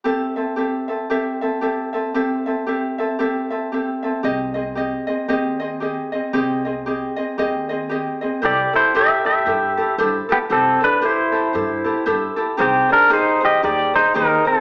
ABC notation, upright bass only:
X:1
M:4/4
L:1/8
Q:"Swing" 1/4=115
K:C
V:1 name="Upright bass" clef=bass
z8 | z8 | C,,4 _E,,4 | C,,4 _E,,4 |
C,, z3 G,,2 G,, z | C,, z3 G,,2 G,, z | C,, z3 _E,,2 E,, z |]